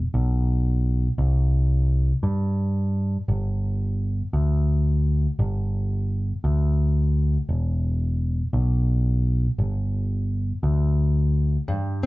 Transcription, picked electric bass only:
0.14 1.07 B1 medium
1.18 2.12 C2 medium
2.23 3.16 G2 medium
3.28 4.21 G1 medium
4.33 5.26 D2 medium
5.39 6.32 G1 medium
6.44 7.37 D2 medium
7.49 8.42 E1 medium
8.53 9.46 B1 medium
9.58 10.52 G1 medium
10.63 11.57 D2 medium

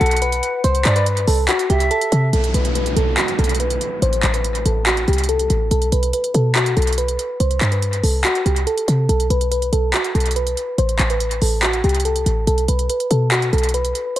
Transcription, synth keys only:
0.01 0.18 A4 medium
0.22 0.62 B4 medium
0.64 0.94 C5 loud
0.96 1.26 B4 medium
1.28 1.45 A4 medium
1.49 1.66 F#4 medium
1.70 1.87 G4 medium
1.91 2.31 A4 medium
2.33 2.50 A4 loud
2.54 2.71 B4 medium
2.75 2.92 B4 medium
2.97 3.14 A4 loud
3.17 3.35 F#4 medium
3.39 3.56 A4 medium
3.60 4.00 B4 medium
4.02 4.32 C5 loud
4.34 4.64 B4 medium
4.66 4.83 A4 medium
4.87 5.04 F#4 medium
5.08 5.25 G4 medium
5.29 5.69 A4 medium
5.71 5.88 A4 loud
5.92 6.09 B4 medium
6.14 6.31 B4 medium
6.34 6.51 A4 medium
6.56 6.73 F#4 medium
6.76 6.94 A4 medium
6.98 7.38 B4 medium
7.40 7.70 C5 loud
7.72 8.02 B4 medium
8.04 8.21 A4 medium
8.25 8.42 F#4 medium
8.46 8.63 G4 medium
8.67 9.07 A4 medium
9.09 9.26 A4 loud
9.30 9.47 B4 medium
9.51 9.68 B4 medium
9.73 9.90 A4 loud
9.94 10.11 F#4 medium
10.15 10.32 A4 medium
10.36 10.76 B4 medium
10.78 11.08 C5 loud
11.10 11.40 B4 medium
11.42 11.59 A4 medium
11.63 11.80 F#4 medium
11.84 12.01 G4 medium
12.05 12.45 A4 medium
12.47 12.64 A4 loud
12.68 12.85 B4 medium
12.90 13.07 B4 medium
13.10 13.28 A4 medium
13.32 13.49 F#4 medium
13.53 13.70 A4 medium
13.74 14.14 B4 medium
14.16 14.19 C5 loud

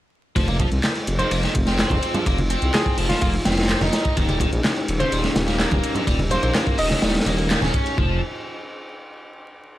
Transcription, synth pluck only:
1.19 1.38 C5 medium
2.74 3.07 G#4 medium
3.09 3.17 F4 medium
3.21 3.29 F4 medium
5.00 5.19 C5 medium
6.31 6.39 C5 medium
6.43 6.51 C5 medium
6.79 7.15 D#5 medium

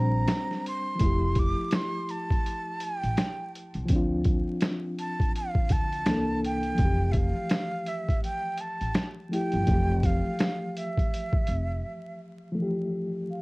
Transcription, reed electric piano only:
0.00 1.02 G3 medium
0.00 1.02 C4 medium
0.00 1.02 D4 medium
0.00 1.02 A#4 medium
0.00 1.02 C5 soft
0.95 3.83 F3 medium
0.95 3.84 A3 medium
1.02 3.86 E4 medium
1.02 3.88 G4 medium
3.86 6.00 F3 medium
3.86 6.02 C4 medium
3.93 6.04 D4 medium
3.93 6.05 F4 medium
6.06 6.78 E3 medium
6.06 6.79 A#3 medium
6.06 6.80 D4 medium
6.11 6.81 A4 medium
6.74 9.25 F3 medium
6.74 9.27 A3 medium
6.81 9.29 E3 medium
6.81 9.30 G4 medium
9.29 9.62 F3 soft
9.29 9.65 A3 soft
9.29 9.68 E4 soft
9.34 9.69 G4 medium
9.63 12.50 F3 medium
9.63 12.52 A3 medium
9.70 12.54 E3 medium
9.70 12.56 G4 medium
12.52 13.42 F3 medium
12.52 13.42 A3 medium
12.59 13.42 E3 medium
12.59 13.42 G4 medium

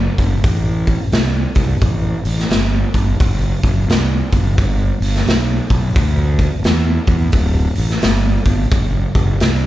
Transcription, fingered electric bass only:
0.18 0.38 F#1 medium
0.44 0.96 A1 medium
1.13 1.45 C2 medium
1.56 1.75 C2 medium
1.82 2.14 A1 medium
2.25 2.45 A1 medium
2.50 2.83 G1 medium
2.94 3.14 G1 medium
3.20 3.52 F#1 medium
3.63 3.83 F#1 medium
3.88 4.21 C2 medium
4.32 4.52 F#1 medium
4.58 4.90 G1 medium
5.00 5.20 G1 medium
5.26 5.59 B1 medium
5.70 5.89 B1 medium
5.96 6.47 D2 medium
6.65 6.97 E2 medium
7.08 7.27 E2 medium
7.33 7.66 D1 medium
7.78 7.97 A1 medium
8.04 8.36 G1 medium
8.46 8.65 G1 medium
8.72 9.04 F#1 medium
9.15 9.34 F#1 medium
9.41 9.66 C2 medium

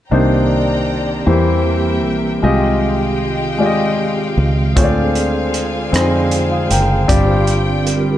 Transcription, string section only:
0.10 2.41 C5 medium
0.10 1.26 D5 soft
0.10 1.25 G5 soft
0.10 1.26 A#5 medium
1.27 2.42 A#4 soft
1.27 2.42 E5 soft
1.27 2.41 G5 medium
2.42 4.74 G#3 medium
2.42 4.74 D#5 soft
2.42 8.18 F5 medium
2.42 4.74 G5 medium
4.75 8.18 C5 medium
4.75 7.07 D5 medium
4.75 7.07 G#5 medium
7.09 8.18 D5 medium
7.09 8.18 G5 medium

